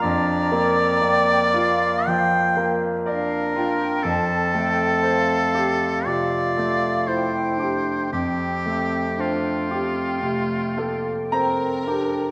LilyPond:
<<
  \new Staff \with { instrumentName = "Flute section" } { \time 4/4 \key f \major \tempo 4 = 58 bes''4 g''8 f''4. f''8 g''8 | a''8 g''8 f''4 f''4 g''4 | g''2.~ g''8 r8 | }
  \new Staff \with { instrumentName = "Oboe" } { \time 4/4 \key f \major d''2 g''8 r8 bes'4 | a'2 d''4 c''4 | g'4 f'2 r4 | }
  \new Staff \with { instrumentName = "Violin section" } { \time 4/4 \key f \major r1 | r1 | r2. bes'4 | }
  \new Staff \with { instrumentName = "Grand piano" } { \time 4/4 \key f \major << { r1 | r1 | r2. bes''4 | } \\ { <f, f'>8 bes8 d''8 f'8 f8 bes8 d''8 f'8 | f,8 a8 c''8 g'8 c8 a8 c''8 g'8 | f,8 a8 c''8 g'8 c8 a'8 c''8 g'8 | } >> }
  \new Staff \with { instrumentName = "Clarinet" } { \time 4/4 \key f \major d'8 c'8 bes4. r8 d'4 | c'2 f'4 e'8 d'8 | c'4 d'8 c'8 a8 bes8 c'8 d'8 | }
>>